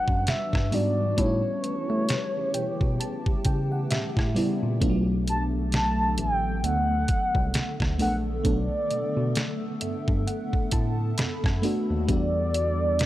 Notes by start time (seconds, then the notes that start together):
Already playing: E3 G3 D4 F#4 F#5
0.08 F#2, kick
0.27 E5, snare, closed hi-hat
0.53 G2, kick, cross-stick, snare
0.71 G#2 G3 B3 D4 F#4 D5, open hi-hat
1.17 A2 C#3 G3 A3 B3 C#4 D#4 G4 C#5, kick, closed hi-hat
1.26 E4
1.64 A3, closed hi-hat
1.90 A3
2.09 snare, closed hi-hat
2.54 B2 G5, closed hi-hat
2.81 B2, kick
3.00 A5, closed hi-hat
3.26 C#3, kick
3.45 C#3 G5, kick, closed hi-hat
3.72 F#5
3.91 A2 E5, snare, closed hi-hat
4.17 A2, kick, cross-stick, snare
4.35 C#3 G3 B3 E4 D5, open hi-hat
4.63 A#2
4.80 B1 D3 A3 B3 D4 F4 A4, kick, closed hi-hat
4.90 F#3
5.28 A5, closed hi-hat
5.72 A5, snare, closed hi-hat
6.18 A1 G5, closed hi-hat
6.64 D2 F#5, closed hi-hat
7.08 kick, closed hi-hat
7.35 C2, kick
7.54 snare, closed hi-hat
7.80 D2, kick, cross-stick, snare
7.98 A#1 A3 B3 D4 A4 F#5, open hi-hat
8.43 B1 A3 B3 D4 A4 D5, kick, closed hi-hat
8.91 B2, closed hi-hat
9.17 B2
9.35 snare, closed hi-hat
9.81 G2 E5, closed hi-hat
10.08 G2, kick
10.27 F#5, closed hi-hat
10.53 A2, kick
10.71 A2 A5, kick, closed hi-hat
11.18 F#2 B5, snare, closed hi-hat
11.44 F#2, kick, cross-stick, snare
11.62 A3 B3 D4 F#4, open hi-hat
11.90 D#2
12.07 E2 E3 G3 B3 D4 F#4 D5, kick, closed hi-hat
12.54 closed hi-hat
12.99 snare, closed hi-hat